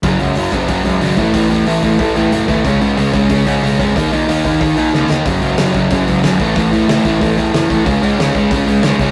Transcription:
0.03 picked electric bass F#1, distorted electric guitar F#2 C#3 F#3, kick, open hi-hat
0.19 picked electric bass C#2, distorted electric guitar F#2 C#3 F#3, open hi-hat
0.35 picked electric bass F#1, distorted electric guitar F#2 C#3 F#3, open hi-hat
0.52 picked electric bass F#1, distorted electric guitar F#2 C#3 F#3, kick, open hi-hat
0.68 picked electric bass F#2, distorted electric guitar F#2 C#3 F#3, kick, open hi-hat
0.84 picked electric bass C#2, distorted electric guitar F#2 C#3 F#3, open hi-hat
1.00 picked electric bass G#1, distorted electric guitar F#2 C#3 F#3, open hi-hat
1.17 picked electric bass A1, distorted electric guitar A2 E3 A3, kick, open hi-hat
1.34 picked electric bass A1, distorted electric guitar A2 E3 A3, kick, open hi-hat
1.50 picked electric bass E2, distorted electric guitar A2 E3 A3, open hi-hat
1.66 picked electric bass A1, distorted electric guitar A2 E3 A3, open hi-hat
1.83 picked electric bass A1, distorted electric guitar A2 E3 A3, kick, open hi-hat
1.99 picked electric bass A2, distorted electric guitar A2 E3 A3, kick, open hi-hat
2.15 picked electric bass E2, distorted electric guitar A2 E3 A3, open hi-hat
2.31 picked electric bass F#1, distorted electric guitar A2 E3 A3, open hi-hat
2.48 picked electric bass D#2, distorted electric guitar A2 E3 A3, kick, open hi-hat
2.64 picked electric bass C#2, distorted electric guitar C#3 G#3 C#4, kick, open hi-hat
2.81 picked electric bass G#2, distorted electric guitar C#3 G#3 C#4, open hi-hat
2.97 picked electric bass C#2, distorted electric guitar C#3 G#3 C#4, open hi-hat
3.13 picked electric bass C#2, distorted electric guitar C#3 G#3 C#4, kick, open hi-hat
3.30 picked electric bass C#3, distorted electric guitar C#3 G#3 C#4, kick, open hi-hat
3.46 picked electric bass G#2, distorted electric guitar C#3 G#3 C#4, open hi-hat
3.63 picked electric bass B1, distorted electric guitar C#3 G#3 C#4, open hi-hat
3.79 picked electric bass F2, distorted electric guitar C#3 G#3 C#4, kick, open hi-hat
3.96 picked electric bass D#2, distorted electric guitar D#3 A#3 D#4, kick, open hi-hat
4.12 picked electric bass A#2, distorted electric guitar D#3 A#3 D#4, open hi-hat
4.28 picked electric bass D#2, distorted electric guitar D#3 A#3 D#4, open hi-hat
4.45 picked electric bass D#2, distorted electric guitar D#3 A#3 D#4, kick, open hi-hat
4.61 distorted electric guitar D#3 A#3 D#4, picked electric bass D#3, kick, open hi-hat
4.77 picked electric bass A#2, distorted electric guitar D#3 A#3 D#4, open hi-hat
4.93 picked electric bass C#2, distorted electric guitar D#3 A#3 D#4, snare
5.10 picked electric bass D#2, distorted electric guitar D#3 A#3 D#4, snare
5.26 picked electric bass F#1, distorted electric guitar F#2 C#3 F#3, kick, open hi-hat
5.42 picked electric bass C#2, distorted electric guitar F#2 C#3 F#3, open hi-hat
5.58 picked electric bass F#1, distorted electric guitar F#2 C#3 F#3, snare, open hi-hat
5.74 picked electric bass F#1, distorted electric guitar F#2 C#3 F#3, kick, open hi-hat
5.90 distorted electric guitar F#2 C#3 F#3, picked electric bass F#2, kick, open hi-hat
6.08 picked electric bass C#2, distorted electric guitar F#2 C#3 F#3, open hi-hat
6.24 picked electric bass G#1, distorted electric guitar F#2 C#3 F#3, snare, open hi-hat
6.40 picked electric bass A1, distorted electric guitar A2 E3 A3, kick, open hi-hat
6.56 picked electric bass A1, distorted electric guitar A2 E3 A3, kick, open hi-hat
6.72 picked electric bass E2, distorted electric guitar A2 E3 A3, open hi-hat
6.88 picked electric bass A1, distorted electric guitar A2 E3 A3, snare, open hi-hat
7.04 picked electric bass A1, distorted electric guitar A2 E3 A3, kick, open hi-hat
7.21 picked electric bass A2, distorted electric guitar A2 E3 A3, kick, open hi-hat
7.37 picked electric bass E2, distorted electric guitar A2 E3 A3, open hi-hat
7.53 picked electric bass F#1, distorted electric guitar A2 E3 A3, snare, open hi-hat
7.70 picked electric bass A1, distorted electric guitar A2 E3 A3, kick, open hi-hat
7.85 picked electric bass C#2, distorted electric guitar C#3 G#3 C#4, kick, open hi-hat
8.02 picked electric bass G#2, distorted electric guitar C#3 G#3 C#4, open hi-hat
8.19 picked electric bass C#2, distorted electric guitar C#3 G#3 C#4, snare, open hi-hat
8.34 picked electric bass C#2, distorted electric guitar C#3 G#3 C#4, kick, open hi-hat
8.51 picked electric bass C#3, distorted electric guitar C#3 G#3 C#4, kick, open hi-hat
8.67 picked electric bass G#2, distorted electric guitar C#3 G#3 C#4, open hi-hat
8.83 picked electric bass B1, distorted electric guitar C#3 G#3 C#4, snare, open hi-hat
8.99 picked electric bass C#2, distorted electric guitar C#3 G#3 C#4, kick, open hi-hat

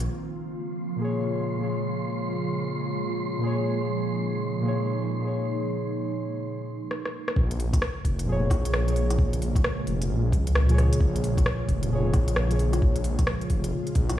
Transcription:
0.00 closed hi-hat
0.08 ambient pad C#3 F3 G#3 A#3 F4, synth texture C6
0.96 synth keys A#2 A#3
1.01 synth keys G#4 C#5
1.56 synth keys A#2 A#3
1.61 synth keys G#4 C#5
3.38 synth keys A#2 A#3
3.43 synth keys G#4 C#5
3.73 ambient pad D#4
4.60 synth keys A#2 A#3
4.65 synth keys G#4 C#5
5.19 synth keys A#2 A#3
5.25 synth keys G#4 C#5
6.91 cross-stick
7.05 cross-stick
7.28 cross-stick
7.36 detuned saw bass A#1, ambient pad C#3 F3 G#3 A#3 F4, kick
7.51 closed hi-hat
7.60 open hi-hat
7.73 kick, cross-stick, closed hi-hat
7.82 cross-stick
8.05 detuned saw bass F1, kick, open hi-hat
8.19 closed hi-hat
8.24 synth keys A#2 F3
8.29 synth keys G#4 C#5
8.50 detuned saw bass A#1, kick, cross-stick, open hi-hat
8.65 closed hi-hat
8.74 cross-stick
8.84 detuned saw bass A#1, synth keys A#2 F3, closed hi-hat
8.89 synth keys G#4 C#5
8.96 open hi-hat
9.10 cross-stick, closed hi-hat
9.19 kick
9.33 closed hi-hat
9.42 open hi-hat
9.56 kick, cross-stick, closed hi-hat
9.64 cross-stick
9.87 detuned saw bass F1, open hi-hat
10.02 closed hi-hat
10.09 detuned saw bass A#1
10.32 detuned saw bass C#2, kick, open hi-hat
10.47 closed hi-hat
10.55 cross-stick
10.66 synth keys A#2 F3, closed hi-hat
10.71 synth keys G#4 C#5
10.78 cross-stick, open hi-hat
10.93 closed hi-hat
11.00 detuned saw bass A#1, kick
11.16 closed hi-hat
11.24 open hi-hat
11.37 kick, cross-stick, closed hi-hat
11.46 cross-stick
11.68 detuned saw bass F1, kick, open hi-hat
11.83 synth keys A#2, closed hi-hat
11.90 synth keys F3 G#4
11.95 synth keys C#5
12.14 detuned saw bass A#1, kick, cross-stick, open hi-hat
12.28 closed hi-hat
12.36 cross-stick
12.47 detuned saw bass A#1, synth keys A#2 F3
12.51 synth keys G#4 C#5, closed hi-hat
12.59 open hi-hat
12.73 cross-stick, closed hi-hat
12.82 kick
12.96 closed hi-hat
13.04 open hi-hat
13.19 kick, cross-stick, closed hi-hat
13.27 cross-stick
13.41 closed hi-hat
13.50 detuned saw bass F1, kick, open hi-hat
13.64 closed hi-hat
13.87 closed hi-hat
13.95 detuned saw bass A#1, kick, open hi-hat
14.09 cross-stick, closed hi-hat

